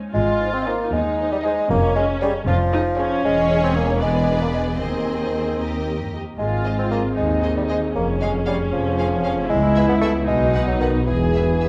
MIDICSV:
0, 0, Header, 1, 8, 480
1, 0, Start_track
1, 0, Key_signature, -4, "major"
1, 0, Tempo, 517241
1, 123, Time_signature, 6, 3, 24, 8
1, 3481, Tempo, 524017
1, 10749, End_track
2, 0, Start_track
2, 0, Title_t, "Violin section"
2, 0, Program_c, 0, 48
2, 607, Note_on_c, 0, 75, 68
2, 787, Note_off_c, 0, 75, 0
2, 1327, Note_on_c, 0, 75, 72
2, 1508, Note_off_c, 0, 75, 0
2, 2053, Note_on_c, 0, 73, 81
2, 2229, Note_off_c, 0, 73, 0
2, 2766, Note_on_c, 0, 73, 77
2, 2944, Note_off_c, 0, 73, 0
2, 3006, Note_on_c, 0, 73, 74
2, 3684, Note_off_c, 0, 73, 0
2, 3719, Note_on_c, 0, 74, 62
2, 4425, Note_off_c, 0, 74, 0
2, 4444, Note_on_c, 0, 75, 52
2, 5155, Note_off_c, 0, 75, 0
2, 5166, Note_on_c, 0, 75, 50
2, 5699, Note_off_c, 0, 75, 0
2, 6138, Note_on_c, 0, 75, 49
2, 6211, Note_off_c, 0, 75, 0
2, 6377, Note_on_c, 0, 75, 53
2, 6450, Note_off_c, 0, 75, 0
2, 6849, Note_on_c, 0, 75, 51
2, 6922, Note_off_c, 0, 75, 0
2, 7088, Note_on_c, 0, 75, 49
2, 7161, Note_off_c, 0, 75, 0
2, 7569, Note_on_c, 0, 77, 52
2, 7643, Note_off_c, 0, 77, 0
2, 7802, Note_on_c, 0, 77, 57
2, 7875, Note_off_c, 0, 77, 0
2, 8284, Note_on_c, 0, 77, 57
2, 8357, Note_off_c, 0, 77, 0
2, 8516, Note_on_c, 0, 77, 56
2, 8590, Note_off_c, 0, 77, 0
2, 8985, Note_on_c, 0, 76, 64
2, 9058, Note_off_c, 0, 76, 0
2, 9227, Note_on_c, 0, 76, 68
2, 9300, Note_off_c, 0, 76, 0
2, 9706, Note_on_c, 0, 78, 62
2, 9779, Note_off_c, 0, 78, 0
2, 9947, Note_on_c, 0, 78, 56
2, 10020, Note_off_c, 0, 78, 0
2, 10435, Note_on_c, 0, 76, 47
2, 10508, Note_off_c, 0, 76, 0
2, 10680, Note_on_c, 0, 76, 47
2, 10749, Note_off_c, 0, 76, 0
2, 10749, End_track
3, 0, Start_track
3, 0, Title_t, "Violin section"
3, 0, Program_c, 1, 48
3, 611, Note_on_c, 1, 72, 65
3, 612, Note_on_c, 1, 68, 62
3, 790, Note_off_c, 1, 68, 0
3, 790, Note_off_c, 1, 72, 0
3, 1337, Note_on_c, 1, 68, 76
3, 1337, Note_on_c, 1, 72, 69
3, 1513, Note_off_c, 1, 68, 0
3, 1513, Note_off_c, 1, 72, 0
3, 2053, Note_on_c, 1, 68, 78
3, 2056, Note_on_c, 1, 73, 76
3, 2229, Note_off_c, 1, 68, 0
3, 2230, Note_off_c, 1, 73, 0
3, 2762, Note_on_c, 1, 73, 75
3, 2764, Note_on_c, 1, 68, 79
3, 2942, Note_off_c, 1, 73, 0
3, 2943, Note_off_c, 1, 68, 0
3, 3003, Note_on_c, 1, 68, 73
3, 3006, Note_on_c, 1, 73, 76
3, 3683, Note_off_c, 1, 68, 0
3, 3684, Note_off_c, 1, 73, 0
3, 3717, Note_on_c, 1, 71, 68
3, 3721, Note_on_c, 1, 68, 61
3, 4427, Note_off_c, 1, 68, 0
3, 4436, Note_on_c, 1, 72, 55
3, 4439, Note_off_c, 1, 71, 0
3, 4440, Note_on_c, 1, 68, 54
3, 5151, Note_off_c, 1, 72, 0
3, 5153, Note_off_c, 1, 68, 0
3, 5166, Note_on_c, 1, 70, 49
3, 5169, Note_on_c, 1, 67, 50
3, 5709, Note_off_c, 1, 70, 0
3, 5711, Note_off_c, 1, 67, 0
3, 6133, Note_on_c, 1, 68, 52
3, 6133, Note_on_c, 1, 72, 53
3, 6206, Note_off_c, 1, 68, 0
3, 6207, Note_off_c, 1, 72, 0
3, 6376, Note_on_c, 1, 68, 48
3, 6381, Note_on_c, 1, 72, 48
3, 6449, Note_off_c, 1, 68, 0
3, 6455, Note_off_c, 1, 72, 0
3, 6853, Note_on_c, 1, 68, 45
3, 6853, Note_on_c, 1, 72, 44
3, 6926, Note_off_c, 1, 68, 0
3, 6927, Note_off_c, 1, 72, 0
3, 7090, Note_on_c, 1, 72, 51
3, 7092, Note_on_c, 1, 68, 51
3, 7163, Note_off_c, 1, 72, 0
3, 7165, Note_off_c, 1, 68, 0
3, 7571, Note_on_c, 1, 68, 59
3, 7571, Note_on_c, 1, 73, 55
3, 7644, Note_off_c, 1, 68, 0
3, 7644, Note_off_c, 1, 73, 0
3, 7806, Note_on_c, 1, 73, 52
3, 7807, Note_on_c, 1, 68, 54
3, 7879, Note_off_c, 1, 73, 0
3, 7880, Note_off_c, 1, 68, 0
3, 8281, Note_on_c, 1, 73, 56
3, 8283, Note_on_c, 1, 68, 58
3, 8354, Note_off_c, 1, 73, 0
3, 8356, Note_off_c, 1, 68, 0
3, 8518, Note_on_c, 1, 73, 55
3, 8520, Note_on_c, 1, 68, 58
3, 8592, Note_off_c, 1, 73, 0
3, 8593, Note_off_c, 1, 68, 0
3, 8983, Note_on_c, 1, 68, 64
3, 8987, Note_on_c, 1, 71, 68
3, 9057, Note_off_c, 1, 68, 0
3, 9060, Note_off_c, 1, 71, 0
3, 9229, Note_on_c, 1, 71, 62
3, 9231, Note_on_c, 1, 68, 66
3, 9303, Note_off_c, 1, 71, 0
3, 9305, Note_off_c, 1, 68, 0
3, 9706, Note_on_c, 1, 71, 58
3, 9779, Note_off_c, 1, 71, 0
3, 9949, Note_on_c, 1, 71, 54
3, 9950, Note_off_c, 1, 71, 0
3, 9950, Note_on_c, 1, 71, 53
3, 10024, Note_off_c, 1, 71, 0
3, 10446, Note_on_c, 1, 71, 48
3, 10448, Note_on_c, 1, 68, 51
3, 10519, Note_off_c, 1, 71, 0
3, 10521, Note_off_c, 1, 68, 0
3, 10689, Note_on_c, 1, 68, 47
3, 10689, Note_on_c, 1, 71, 44
3, 10749, Note_off_c, 1, 68, 0
3, 10749, Note_off_c, 1, 71, 0
3, 10749, End_track
4, 0, Start_track
4, 0, Title_t, "French horn section"
4, 0, Program_c, 2, 60
4, 372, Note_on_c, 2, 72, 56
4, 375, Note_on_c, 2, 63, 56
4, 458, Note_off_c, 2, 72, 0
4, 461, Note_off_c, 2, 63, 0
4, 608, Note_on_c, 2, 72, 52
4, 611, Note_on_c, 2, 63, 50
4, 695, Note_off_c, 2, 72, 0
4, 697, Note_off_c, 2, 63, 0
4, 1091, Note_on_c, 2, 72, 60
4, 1095, Note_on_c, 2, 63, 59
4, 1177, Note_off_c, 2, 72, 0
4, 1181, Note_off_c, 2, 63, 0
4, 1342, Note_on_c, 2, 63, 60
4, 1346, Note_on_c, 2, 72, 57
4, 1426, Note_off_c, 2, 63, 0
4, 1429, Note_off_c, 2, 72, 0
4, 1820, Note_on_c, 2, 61, 72
4, 1823, Note_on_c, 2, 68, 65
4, 1904, Note_off_c, 2, 61, 0
4, 1906, Note_off_c, 2, 68, 0
4, 2057, Note_on_c, 2, 61, 63
4, 2059, Note_on_c, 2, 68, 65
4, 2141, Note_off_c, 2, 61, 0
4, 2143, Note_off_c, 2, 68, 0
4, 2530, Note_on_c, 2, 68, 67
4, 2531, Note_on_c, 2, 61, 63
4, 2615, Note_off_c, 2, 68, 0
4, 2616, Note_off_c, 2, 61, 0
4, 2765, Note_on_c, 2, 68, 61
4, 2766, Note_on_c, 2, 61, 67
4, 2852, Note_off_c, 2, 61, 0
4, 2852, Note_off_c, 2, 68, 0
4, 3236, Note_on_c, 2, 61, 63
4, 3237, Note_on_c, 2, 68, 63
4, 3324, Note_off_c, 2, 61, 0
4, 3325, Note_off_c, 2, 68, 0
4, 3472, Note_on_c, 2, 61, 55
4, 3473, Note_on_c, 2, 68, 56
4, 3560, Note_off_c, 2, 61, 0
4, 3561, Note_off_c, 2, 68, 0
4, 3952, Note_on_c, 2, 71, 52
4, 3955, Note_on_c, 2, 62, 51
4, 4040, Note_off_c, 2, 71, 0
4, 4043, Note_off_c, 2, 62, 0
4, 4198, Note_on_c, 2, 71, 49
4, 4201, Note_on_c, 2, 62, 50
4, 4285, Note_off_c, 2, 71, 0
4, 4287, Note_off_c, 2, 62, 0
4, 4687, Note_on_c, 2, 68, 48
4, 4693, Note_on_c, 2, 60, 47
4, 4774, Note_off_c, 2, 68, 0
4, 4778, Note_off_c, 2, 60, 0
4, 4929, Note_on_c, 2, 60, 43
4, 4930, Note_on_c, 2, 68, 43
4, 5016, Note_off_c, 2, 60, 0
4, 5017, Note_off_c, 2, 68, 0
4, 5410, Note_on_c, 2, 67, 43
4, 5413, Note_on_c, 2, 63, 41
4, 5498, Note_off_c, 2, 67, 0
4, 5500, Note_off_c, 2, 63, 0
4, 5655, Note_on_c, 2, 63, 44
4, 5657, Note_on_c, 2, 67, 43
4, 5742, Note_off_c, 2, 63, 0
4, 5744, Note_off_c, 2, 67, 0
4, 5900, Note_on_c, 2, 60, 60
4, 5903, Note_on_c, 2, 68, 60
4, 7294, Note_off_c, 2, 60, 0
4, 7330, Note_on_c, 2, 61, 62
4, 8714, Note_off_c, 2, 68, 0
4, 8719, Note_off_c, 2, 61, 0
4, 8749, Note_on_c, 2, 64, 72
4, 8753, Note_on_c, 2, 59, 76
4, 9446, Note_off_c, 2, 64, 0
4, 9465, Note_on_c, 2, 66, 68
4, 10188, Note_on_c, 2, 68, 62
4, 10190, Note_off_c, 2, 66, 0
4, 10749, Note_off_c, 2, 59, 0
4, 10749, Note_off_c, 2, 68, 0
4, 10749, End_track
5, 0, Start_track
5, 0, Title_t, "Viola section"
5, 0, Program_c, 3, 48
5, 126, Note_on_c, 3, 65, 79
5, 814, Note_off_c, 3, 65, 0
5, 852, Note_on_c, 3, 63, 64
5, 1572, Note_off_c, 3, 63, 0
5, 1573, Note_on_c, 3, 61, 84
5, 2275, Note_off_c, 3, 61, 0
5, 2290, Note_on_c, 3, 65, 88
5, 2364, Note_off_c, 3, 65, 0
5, 2529, Note_on_c, 3, 63, 85
5, 2604, Note_off_c, 3, 63, 0
5, 2772, Note_on_c, 3, 61, 88
5, 3704, Note_off_c, 3, 61, 0
5, 3723, Note_on_c, 3, 59, 62
5, 4428, Note_off_c, 3, 59, 0
5, 4438, Note_on_c, 3, 60, 54
5, 5531, Note_off_c, 3, 60, 0
5, 5896, Note_on_c, 3, 65, 71
5, 6578, Note_off_c, 3, 65, 0
5, 6613, Note_on_c, 3, 63, 55
5, 7327, Note_on_c, 3, 61, 70
5, 7328, Note_off_c, 3, 63, 0
5, 8718, Note_off_c, 3, 61, 0
5, 8743, Note_on_c, 3, 64, 80
5, 9457, Note_off_c, 3, 64, 0
5, 9457, Note_on_c, 3, 63, 75
5, 10171, Note_off_c, 3, 63, 0
5, 10187, Note_on_c, 3, 68, 65
5, 10749, Note_off_c, 3, 68, 0
5, 10749, End_track
6, 0, Start_track
6, 0, Title_t, "Bassoon"
6, 0, Program_c, 4, 70
6, 130, Note_on_c, 4, 56, 90
6, 497, Note_on_c, 4, 60, 79
6, 511, Note_off_c, 4, 56, 0
6, 615, Note_on_c, 4, 58, 86
6, 629, Note_off_c, 4, 60, 0
6, 853, Note_off_c, 4, 58, 0
6, 860, Note_on_c, 4, 56, 85
6, 1209, Note_off_c, 4, 56, 0
6, 1224, Note_on_c, 4, 55, 89
6, 1275, Note_off_c, 4, 55, 0
6, 1341, Note_on_c, 4, 56, 94
6, 1572, Note_off_c, 4, 56, 0
6, 1581, Note_on_c, 4, 58, 105
6, 1811, Note_off_c, 4, 58, 0
6, 1818, Note_on_c, 4, 56, 93
6, 1924, Note_off_c, 4, 56, 0
6, 2060, Note_on_c, 4, 55, 102
6, 2165, Note_off_c, 4, 55, 0
6, 2296, Note_on_c, 4, 53, 108
6, 2995, Note_off_c, 4, 53, 0
6, 3015, Note_on_c, 4, 56, 108
6, 3360, Note_off_c, 4, 56, 0
6, 3376, Note_on_c, 4, 60, 87
6, 3488, Note_on_c, 4, 58, 80
6, 3502, Note_off_c, 4, 60, 0
6, 3721, Note_off_c, 4, 58, 0
6, 3727, Note_on_c, 4, 56, 93
6, 4076, Note_off_c, 4, 56, 0
6, 4092, Note_on_c, 4, 58, 71
6, 4143, Note_off_c, 4, 58, 0
6, 4206, Note_on_c, 4, 56, 76
6, 4313, Note_off_c, 4, 56, 0
6, 4441, Note_on_c, 4, 51, 73
6, 5630, Note_off_c, 4, 51, 0
6, 5895, Note_on_c, 4, 56, 80
6, 6230, Note_off_c, 4, 56, 0
6, 6262, Note_on_c, 4, 60, 73
6, 6371, Note_off_c, 4, 60, 0
6, 6376, Note_on_c, 4, 58, 72
6, 6483, Note_off_c, 4, 58, 0
6, 6614, Note_on_c, 4, 56, 80
6, 6964, Note_off_c, 4, 56, 0
6, 6980, Note_on_c, 4, 55, 72
6, 7032, Note_off_c, 4, 55, 0
6, 7097, Note_on_c, 4, 56, 75
6, 7203, Note_off_c, 4, 56, 0
6, 7331, Note_on_c, 4, 58, 77
6, 7437, Note_off_c, 4, 58, 0
6, 7568, Note_on_c, 4, 56, 70
6, 7674, Note_off_c, 4, 56, 0
6, 7804, Note_on_c, 4, 55, 77
6, 7910, Note_off_c, 4, 55, 0
6, 8042, Note_on_c, 4, 53, 87
6, 8734, Note_off_c, 4, 53, 0
6, 8743, Note_on_c, 4, 56, 105
6, 9093, Note_off_c, 4, 56, 0
6, 9105, Note_on_c, 4, 59, 90
6, 9158, Note_off_c, 4, 59, 0
6, 9215, Note_on_c, 4, 57, 98
6, 9324, Note_off_c, 4, 57, 0
6, 9456, Note_on_c, 4, 56, 96
6, 9823, Note_on_c, 4, 54, 85
6, 9837, Note_off_c, 4, 56, 0
6, 9934, Note_off_c, 4, 54, 0
6, 9939, Note_on_c, 4, 51, 74
6, 10050, Note_off_c, 4, 51, 0
6, 10188, Note_on_c, 4, 52, 80
6, 10749, Note_off_c, 4, 52, 0
6, 10749, End_track
7, 0, Start_track
7, 0, Title_t, "Cello section"
7, 0, Program_c, 5, 48
7, 128, Note_on_c, 5, 44, 70
7, 707, Note_off_c, 5, 44, 0
7, 858, Note_on_c, 5, 39, 72
7, 1430, Note_off_c, 5, 39, 0
7, 1574, Note_on_c, 5, 41, 80
7, 2145, Note_off_c, 5, 41, 0
7, 2292, Note_on_c, 5, 41, 89
7, 2863, Note_off_c, 5, 41, 0
7, 3002, Note_on_c, 5, 40, 72
7, 4403, Note_off_c, 5, 40, 0
7, 4433, Note_on_c, 5, 39, 56
7, 5102, Note_off_c, 5, 39, 0
7, 5161, Note_on_c, 5, 39, 55
7, 5503, Note_off_c, 5, 39, 0
7, 5532, Note_on_c, 5, 43, 52
7, 5651, Note_on_c, 5, 41, 49
7, 5654, Note_off_c, 5, 43, 0
7, 5724, Note_off_c, 5, 41, 0
7, 5888, Note_on_c, 5, 44, 61
7, 6491, Note_off_c, 5, 44, 0
7, 6612, Note_on_c, 5, 39, 61
7, 7208, Note_off_c, 5, 39, 0
7, 7325, Note_on_c, 5, 41, 67
7, 7919, Note_off_c, 5, 41, 0
7, 8037, Note_on_c, 5, 41, 70
7, 8628, Note_off_c, 5, 41, 0
7, 8743, Note_on_c, 5, 37, 83
7, 9338, Note_off_c, 5, 37, 0
7, 9458, Note_on_c, 5, 47, 80
7, 10063, Note_off_c, 5, 47, 0
7, 10185, Note_on_c, 5, 40, 63
7, 10749, Note_off_c, 5, 40, 0
7, 10749, End_track
8, 0, Start_track
8, 0, Title_t, "Double bass section"
8, 0, Program_c, 6, 48
8, 130, Note_on_c, 6, 32, 78
8, 708, Note_off_c, 6, 32, 0
8, 858, Note_on_c, 6, 39, 74
8, 1430, Note_off_c, 6, 39, 0
8, 1576, Note_on_c, 6, 29, 87
8, 2146, Note_off_c, 6, 29, 0
8, 2287, Note_on_c, 6, 29, 90
8, 2860, Note_off_c, 6, 29, 0
8, 3005, Note_on_c, 6, 28, 81
8, 4404, Note_off_c, 6, 28, 0
8, 4437, Note_on_c, 6, 39, 58
8, 5683, Note_off_c, 6, 39, 0
8, 5897, Note_on_c, 6, 32, 61
8, 6495, Note_off_c, 6, 32, 0
8, 6611, Note_on_c, 6, 39, 67
8, 7208, Note_off_c, 6, 39, 0
8, 7327, Note_on_c, 6, 29, 68
8, 7920, Note_off_c, 6, 29, 0
8, 8036, Note_on_c, 6, 29, 75
8, 8627, Note_off_c, 6, 29, 0
8, 8743, Note_on_c, 6, 37, 89
8, 9338, Note_off_c, 6, 37, 0
8, 9456, Note_on_c, 6, 35, 76
8, 10062, Note_off_c, 6, 35, 0
8, 10188, Note_on_c, 6, 28, 65
8, 10749, Note_off_c, 6, 28, 0
8, 10749, End_track
0, 0, End_of_file